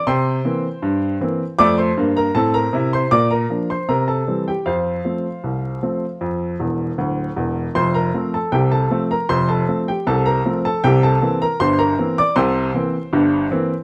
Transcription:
<<
  \new Staff \with { instrumentName = "Upright piano" } { \time 2/4 \key f \major \tempo 4 = 78 <c'' g'' c'''>4. r8 | <d'' d'''>16 <c'' c'''>8 <bes' bes''>16 <a' a''>16 <bes' bes''>8 <c'' c'''>16 | <d'' d'''>16 <bes' bes''>8 <c'' c'''>16 <bes' bes''>16 <a' a''>8 <g' g''>16 | <f' c'' f''>2~ |
<f' c'' f''>4 r4 | <c'' c'''>16 <bes' bes''>8 <a' a''>16 <g' g''>16 <a' a''>8 <bes' bes''>16 | <c'' c'''>16 <a' a''>8 <g' g''>16 <a' a''>16 <bes' bes''>8 <a' a''>16 | <g' g''>16 <a' a''>8 <bes' bes''>16 <c'' c'''>16 <bes' bes''>8 <d'' d'''>16 |
<c'' g'' c'''>4. r8 | }
  \new Staff \with { instrumentName = "Upright piano" } { \clef bass \time 2/4 \key f \major c8 <e bes c'>8 g,8 <e bes c'>8 | <f, a>8 <g, bes>8 <a, c'>8 <c e'>8 | bes,8 <f bes d'>8 c8 <e g c'>8 | f,8 <f a c'>8 c,8 <f a c'>8 |
f,8 <e,, e,>8 <d,, d,>8 <e,, e,>8 | <f,, f,>8 <f a c'>8 <c, c>8 <f a c'>8 | <f,, f,>8 <f a c'>8 <c, c>8 <f a c'>8 | <c, c>8 <e bes c'>8 <g,, g,>8 <e bes c'>8 |
<c, c>8 <e bes c'>8 <g,, g,>8 <e bes c'>8 | }
>>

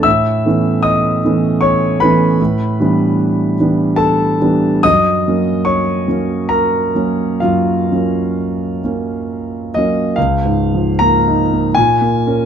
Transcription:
<<
  \new Staff \with { instrumentName = "Grand piano" } { \time 3/4 \key ges \lydian \tempo 4 = 74 <e'' e'''>4 <ees'' ees'''>4 <cis'' cis'''>8 <b' b''>8~ | <b' b''>4. r8 <a' a''>4 | <ees'' ees'''>4 <des'' des'''>4 <bes' bes''>4 | <f' f''>2~ <f' f''>8 ees''8 |
f''4 bes''4 aes''4 | }
  \new Staff \with { instrumentName = "Grand piano" } { \time 3/4 \key ges \lydian a,8 <e a b cis'>4 <e a b cis'>4 <e a b cis'>8 | a,8 <e g b d'>4 <e g b d'>4 <e g b d'>8 | ges,8 <ges bes des'>4 <ges bes des'>4 <ges bes des'>8 | ges,8 <ges bes des'>4 <ges bes des'>4 <ges bes des'>8 |
\tuplet 3/2 { des,8 aes,8 f8 bes8 ees'8 bes8 bes,8 bes8 <des' bes'>8 } | }
>>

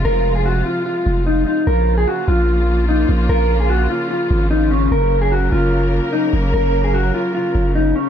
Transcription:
<<
  \new Staff \with { instrumentName = "Clean electric guitar" } { \time 4/4 \key bes \minor \tempo 4 = 148 bes'8. aes'16 ges'8 f'8 f'4 ees'8 ees'8 | bes'8. aes'16 ges'8 f'4. ees'8 r8 | bes'8. aes'16 ges'8 f'8 f'4 ees'8 des'8 | bes'8. aes'16 ges'8 f'4. ees'8 r8 |
bes'8. aes'16 ges'8 f'8 f'4 ees'8 des'8 | }
  \new Staff \with { instrumentName = "String section" } { \clef bass \time 4/4 \key bes \minor << { <f aes f'>1 | <f bes f'>1~ | <f bes f'>1 | <ges bes bes'>1~ |
<ges bes bes'>1 | } \\ { c1 | des1~ | des1~ | des1~ |
des1 | } >> }
  \new Staff \with { instrumentName = "808-style bass" } { \clef bass \time 4/4 \key bes \minor f,,4. r4 f,,4 r8 | bes,,4 r8 bes,,2 bes,,8 | bes,,4. r4 aes,,4. | ges,,4. ges,,4~ ges,,16 r8. ges,,8 |
ges,,4. r4 ges,,4 r8 | }
>>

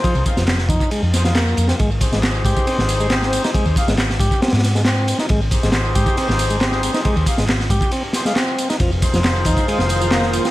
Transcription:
<<
  \new Staff \with { instrumentName = "Horn section" } { \time 4/4 \key aes \major \tempo 4 = 137 <ees' f' aes' c''>8 <ees' f' aes' f''>16 r4. r16 <ees' f' aes' c''>16 <ees' f' aes' f''>16 r4 | r8 <ees' g' aes' c''>2.~ <ees' g' aes' c''>8~ | <ees' g' aes' c''>8 <ees' g' aes' f''>16 r2. r16 | r8 <ees' g' aes' c''>2.~ <ees' g' aes' c''>8~ |
<ees' g' aes' c''>8 <ees' g' aes' f''>16 r4. r16 <ees' g' aes' c''>16 <ees' g' aes' f''>16 r4 | r8 <ees' f' aes' c''>2.~ <ees' f' aes' c''>8 | }
  \new Staff \with { instrumentName = "Tonewheel organ" } { \time 4/4 \key aes \major f16 r8 f16 r8 ees'8 aes16 r8 f16 bes8. c'16 | aes16 r8 aes16 r8 g'8 c'16 r8 aes16 c'8. ees'16 | aes16 r8 aes16 r8 g'8 c'16 r8 aes16 c'8. ees'16 | aes16 r8 aes16 r8 g'8 c'16 r8 aes16 c'8. ees'16 |
aes16 r8 aes16 r8 g'8 c'16 r8 aes16 c'8. ees'16 | f16 r8 f16 r8 ees'8 aes16 r8 f16 bes8. c'16 | }
  \new Staff \with { instrumentName = "Analog synth pad" } { \clef bass \time 4/4 \key aes \major r1 | r1 | r1 | r1 |
r1 | <ees aes f'>1 | }
  \new Staff \with { instrumentName = "Fingered electric bass" } { \clef bass \time 4/4 \key aes \major r16 c,16 r16 f,,8. f,16 r8 f,4~ f,16 f,16 r16 | aes,,8 r16 aes,,8. aes,16 r8 aes,,4~ aes,,16 r8 | r16 ees,16 r16 aes,,8. aes,16 r8 aes,4~ aes,16 r8 | aes,,8 r16 aes,,8. aes,16 r8 aes,,4~ aes,,16 r8 |
r16 ees,16 r16 aes,,8. aes,16 r2 r16 | f,,8 r16 f,,8. f,16 r8 f,,4~ f,,16 r8 | }
  \new DrumStaff \with { instrumentName = "Drums" } \drummode { \time 4/4 <bd cymr tamb>16 cymr16 <bd cymr tamb>16 <sn tamb>16 <hc cymr sn tamb>16 sn16 <bd cymr tamb>16 <bd tamb>16 <cymr tamb>8 <cymr sn tamb>16 <sn tamb>16 <hc cymr sn tamb>8 <cymr tamb>16 <sn tamb>16 | <bd cymr tamb>8 <bd cymr tamb>16 <sn tamb>16 <hc cymr sn tamb>8 <bd cymr tamb>16 <bd tamb>16 <cymr tamb>16 sn16 <cymr tamb>16 tamb16 <hc cymr sn tamb>16 sn16 <cymr tamb>16 <sn tamb>16 | <bd cymr tamb>16 cymr16 <bd cymr tamb>16 <sn tamb>16 <hc cymr sn tamb>16 sn16 <bd cymr tamb>16 <bd tamb>16 <cymr sn tamb>32 <cymr sn>32 <cymr sn>32 <cymr sn>32 <cymr sn tamb>16 <sn tamb>16 <hc cymr sn tamb>8 <cymr tamb>16 <sn tamb>16 | <bd cymr tamb>8 <bd cymr tamb>16 <sn tamb>16 <hc cymr sn tamb>8 <bd cymr tamb>16 <bd tamb>16 <cymr tamb>16 sn16 <cymr tamb>16 tamb16 <hc cymr sn tamb>16 sn16 <cymr tamb>16 <sn tamb>16 |
<bd cymr tamb>16 cymr16 <bd cymr tamb>16 <sn tamb>16 <hc cymr sn tamb>16 sn16 <bd cymr tamb>16 <bd tamb>16 <cymr tamb>8 <cymr sn tamb>16 <sn tamb>16 <hc cymr sn tamb>8 <cymr tamb>16 <sn tamb>16 | <bd cymr tamb>8 <bd cymr tamb>16 <sn tamb>16 <hc cymr sn tamb>8 <bd cymr tamb>16 <bd tamb>16 <cymr tamb>16 sn16 <cymr tamb>16 tamb16 <hc cymr sn tamb>16 sn16 <cymr tamb>16 <sn tamb>16 | }
>>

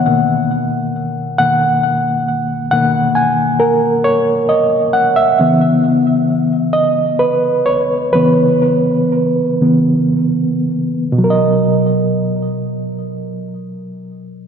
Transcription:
<<
  \new Staff \with { instrumentName = "Reed electric piano" } { \time 6/8 \key b \major \tempo 4. = 44 fis''4. fis''4. | fis''8 gis''8 ais'8 cis''8 dis''8 fis''16 e''16~ | e''4. dis''8 b'8 cis''8 | b'2 r4 |
<b, fis ais' dis''>2. | }
  \new Staff \with { instrumentName = "Reed electric piano" } { \clef bass \time 6/8 \key b \major <b, dis ais>4. <b, dis ais>8 r4 | <b, dis ais>2. | <cis e b>2. | <cis e b>8 r4 <cis e b>8 r4 |
r2. | }
>>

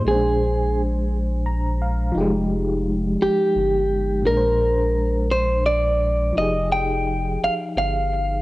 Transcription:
<<
  \new Staff \with { instrumentName = "Clean electric guitar" } { \time 6/8 \key f \dorian \tempo 4. = 57 aes'4 r2 | r4. g'4. | bes'4. c''8 d''4 | ees''8 g''4 f''8 f''4 | }
  \new Staff \with { instrumentName = "FM electric piano" } { \time 6/8 \key f \dorian << { r2 bes''8 f''8 | r2. | r2. | r2. | } \\ { <bes, aes c' d' c''>2. | <f aes ees' g'>2. | <bes, aes d' bes' c''>2. | <f ees' g' aes'>2. | } >> }
  \new Staff \with { instrumentName = "Analog synth bass" } { \clef bass \time 6/8 \key f \dorian bes,,2. | f,,4. g,,8 g,,4 | bes,,2. | f,,4. g,,8 g,,4 | }
>>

